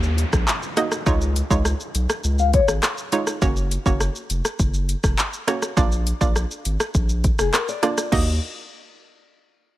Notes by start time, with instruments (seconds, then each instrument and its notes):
Already playing: sub bass D#2, downlifter
0.03 shaker
0.18 closed hi-hat, shaker
0.33 sub bass A#1, kick, cross-stick, shaker
0.48 clap, shaker
0.63 shaker
0.77 synth pluck A#3 D#4 F#4 D#5, cross-stick, closed hi-hat, shaker
0.92 cross-stick, shaker
1.06 sub bass C#2, synth pluck G#3 D#4 F4 C#5, kick, shaker
1.21 shaker
1.36 closed hi-hat, shaker
1.50 sub bass C#2, synth pluck G#3 D#4 F4 C#5, kick, shaker
1.65 cross-stick, shaker
1.80 shaker
1.95 sub bass B1, closed hi-hat, shaker
2.10 cross-stick, shaker
2.24 sub bass C#2, shaker
2.39 steel-string acoustic guitar F5, shaker
2.53 steel-string acoustic guitar C#5, kick, closed hi-hat, shaker
2.68 sub bass G#1, steel-string acoustic guitar G#4, cross-stick, shaker
2.83 cross-stick, clap, shaker
2.98 shaker
3.12 synth pluck G#3 D#4 F4 C#5, closed hi-hat, shaker
3.27 cross-stick, shaker
3.42 sub bass F#1, synth pluck A#3 C#4 F#4 C#5, kick, shaker
3.57 shaker
3.71 closed hi-hat, shaker
3.86 sub bass F#1, synth pluck A#3 C#4 F#4 C#5, kick, shaker
4.00 cross-stick, shaker
4.16 shaker
4.30 sub bass F1, closed hi-hat, shaker
4.45 cross-stick, shaker
4.59 sub bass F#1, kick, shaker
4.74 shaker
4.89 closed hi-hat, shaker
5.04 sub bass F1, kick, cross-stick, shaker
5.19 clap, shaker
5.33 shaker
5.47 synth pluck A#3 C#4 F#4 C#5, cross-stick, closed hi-hat, shaker
5.62 cross-stick, shaker
5.77 sub bass A#1, synth pluck A#3 D4 F4 D5, kick, shaker
5.92 shaker
6.07 closed hi-hat, shaker
6.21 sub bass A#1, synth pluck A#3 D4 F4 D5, kick, shaker
6.36 cross-stick, shaker
6.51 shaker
6.65 sub bass G#1, closed hi-hat, shaker
6.80 cross-stick, shaker
6.95 sub bass A#1, kick, shaker
7.09 shaker
7.24 kick, closed hi-hat, shaker
7.39 sub bass F1, steel-string acoustic guitar G#4, cross-stick, shaker
7.54 steel-string acoustic guitar A#4, cross-stick, clap, shaker
7.68 steel-string acoustic guitar D5, shaker
7.83 synth pluck A#3 D4 F4 D5, cross-stick, closed hi-hat, shaker
7.98 cross-stick, shaker
8.12 sub bass D#2, synth pluck A#3 D#4 F#4 D#5, kick, crash